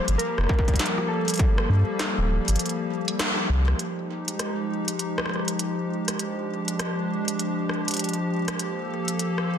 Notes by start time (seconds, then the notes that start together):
Already playing: F3 G3 A#3 G4
0.08 G1, closed hi-hat
0.18 A#4, closed hi-hat
0.38 F1, cross-stick
0.41 cross-stick
0.44 cross-stick
0.47 kick, cross-stick
0.49 cross-stick
0.54 cross-stick
0.59 kick, cross-stick
0.63 cross-stick
0.68 kick, closed hi-hat
0.74 kick, closed hi-hat
0.79 snare, closed hi-hat
0.86 closed hi-hat
0.98 cross-stick
1.08 A4
1.28 closed hi-hat
1.30 closed hi-hat
1.34 closed hi-hat
1.36 closed hi-hat
1.37 kick, closed hi-hat
1.39 closed hi-hat
1.58 cross-stick
1.69 G2
1.99 cross-stick, snare, closed hi-hat
2.18 D1
2.48 G1, closed hi-hat
2.56 closed hi-hat
2.59 closed hi-hat
2.66 closed hi-hat
2.69 closed hi-hat
3.08 closed hi-hat
3.19 cross-stick, snare, closed hi-hat
3.49 C2
3.68 cross-stick
3.79 F3 G#3 D#4 G4, closed hi-hat
4.28 closed hi-hat
4.39 cross-stick, closed hi-hat
4.88 closed hi-hat
4.99 closed hi-hat
5.18 cross-stick
5.26 cross-stick
5.29 cross-stick
5.36 cross-stick
5.39 cross-stick
5.48 closed hi-hat
5.59 closed hi-hat
6.08 cross-stick, closed hi-hat
6.19 D4, closed hi-hat
6.68 closed hi-hat
6.79 cross-stick, closed hi-hat
7.28 closed hi-hat
7.39 closed hi-hat
7.69 cross-stick
7.88 closed hi-hat
7.91 closed hi-hat
7.94 closed hi-hat
7.97 closed hi-hat
7.99 closed hi-hat
8.04 closed hi-hat
8.09 closed hi-hat
8.13 closed hi-hat
8.48 cross-stick, closed hi-hat
8.59 A#3 A4, closed hi-hat
9.08 closed hi-hat
9.19 closed hi-hat
9.38 cross-stick